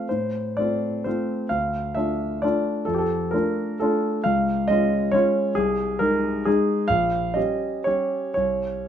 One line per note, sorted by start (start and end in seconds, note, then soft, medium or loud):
0.09 0.57 A2 soft
0.09 0.57 C5 medium
0.57 1.02 A3 soft
0.57 1.02 C4 soft
0.57 1.03 F4 soft
0.57 1.05 D5 medium
1.04 1.46 A3 soft
1.04 1.46 C4 soft
1.04 1.47 F4 soft
1.04 1.49 C5 medium
1.49 1.95 D2 soft
1.49 1.96 F5 medium
1.95 2.39 A3 soft
1.95 2.40 D4 soft
1.95 2.40 F4 soft
1.95 2.42 E5 medium
2.42 2.84 A3 soft
2.42 2.84 D4 soft
2.42 2.84 F4 soft
2.42 2.87 D5 medium
2.85 3.32 F2 soft
2.85 2.93 A4 medium
2.94 3.01 G4 medium
2.94 3.32 A4 medium
3.31 3.77 A3 soft
3.31 3.77 D4 soft
3.31 3.77 F4 soft
3.31 3.80 A#4 medium
3.80 4.21 A3 soft
3.80 4.21 D4 soft
3.80 4.21 F4 soft
3.80 4.24 A4 medium
4.24 4.68 C#2 soft
4.24 4.68 F5 medium
4.68 5.10 G#3 soft
4.68 5.11 C#4 soft
4.68 5.11 F4 soft
4.68 5.13 D#5 medium
5.12 5.52 G#3 soft
5.12 5.53 C#4 soft
5.12 5.53 F4 soft
5.12 5.56 C#5 medium
5.55 6.00 C2 soft
5.55 6.00 G#4 medium
5.99 6.43 G#3 soft
5.99 6.43 D#4 soft
5.99 6.46 A#4 medium
6.45 6.86 G#3 soft
6.45 6.87 D#4 soft
6.45 6.89 G#4 medium
6.88 7.35 A#1 soft
6.88 7.35 F5 medium
7.34 7.82 G3 soft
7.34 7.82 C#4 soft
7.34 7.83 G4 soft
7.34 7.85 D#5 medium
7.84 8.33 G3 soft
7.84 8.33 C#4 soft
7.84 8.33 G4 soft
7.84 8.33 C#5 medium
8.34 8.88 C2 soft
8.34 8.88 C#5 medium